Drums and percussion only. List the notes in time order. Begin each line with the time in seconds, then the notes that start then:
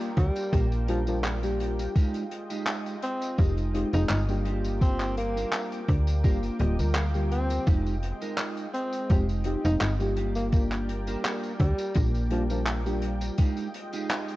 0.00 closed hi-hat, tambourine
0.17 kick, closed hi-hat
0.36 closed hi-hat, tambourine
0.53 kick, closed hi-hat, tambourine
0.72 closed hi-hat, tambourine
0.88 closed hi-hat
1.07 closed hi-hat, tambourine
1.24 clap, closed hi-hat, tambourine
1.43 closed hi-hat, tambourine
1.60 closed hi-hat
1.79 closed hi-hat, tambourine
1.96 kick, closed hi-hat, tambourine
2.14 closed hi-hat, tambourine
2.31 closed hi-hat
2.50 closed hi-hat, tambourine
2.67 clap, closed hi-hat, tambourine
2.86 closed hi-hat, tambourine
3.02 closed hi-hat
3.22 closed hi-hat, tambourine
3.38 kick, closed hi-hat, tambourine
3.57 closed hi-hat, tambourine
3.75 closed hi-hat
3.93 closed hi-hat, tambourine
4.09 clap, closed hi-hat, tambourine
4.29 closed hi-hat, tambourine
4.45 closed hi-hat
4.64 closed hi-hat, tambourine
4.81 kick, closed hi-hat, tambourine
5.00 clap, closed hi-hat, tambourine
5.17 closed hi-hat
5.37 closed hi-hat, tambourine
5.52 clap, closed hi-hat, tambourine
5.72 closed hi-hat, tambourine
5.88 kick, closed hi-hat
6.07 closed hi-hat, tambourine
6.24 kick, closed hi-hat, tambourine
6.43 closed hi-hat, tambourine
6.59 closed hi-hat
6.79 closed hi-hat, tambourine
6.95 clap, closed hi-hat, tambourine
7.14 closed hi-hat, tambourine
7.32 closed hi-hat
7.50 closed hi-hat, tambourine
7.67 kick, closed hi-hat, tambourine
7.86 closed hi-hat, tambourine
8.03 closed hi-hat
8.22 closed hi-hat, tambourine
8.38 clap, closed hi-hat, tambourine
8.57 closed hi-hat, tambourine
8.74 closed hi-hat
8.93 closed hi-hat, tambourine
9.10 kick, closed hi-hat, tambourine
9.29 closed hi-hat, tambourine
9.44 closed hi-hat
9.65 closed hi-hat, tambourine
9.81 clap, closed hi-hat, tambourine
10.00 closed hi-hat, tambourine
10.17 closed hi-hat
10.35 closed hi-hat, tambourine
10.52 kick, closed hi-hat, tambourine
10.71 clap, closed hi-hat, tambourine
10.89 closed hi-hat
11.07 closed hi-hat, tambourine
11.24 clap, closed hi-hat, tambourine
11.43 closed hi-hat, tambourine
11.59 kick, closed hi-hat
11.78 closed hi-hat, tambourine
11.94 kick, closed hi-hat, tambourine
12.14 closed hi-hat, tambourine
12.30 closed hi-hat
12.50 closed hi-hat, tambourine
12.66 clap, closed hi-hat, tambourine
12.86 closed hi-hat, tambourine
13.02 closed hi-hat
13.21 closed hi-hat, tambourine
13.38 kick, closed hi-hat, tambourine
13.57 closed hi-hat, tambourine
13.74 closed hi-hat
13.93 closed hi-hat, tambourine
14.09 clap, closed hi-hat, tambourine
14.28 closed hi-hat, tambourine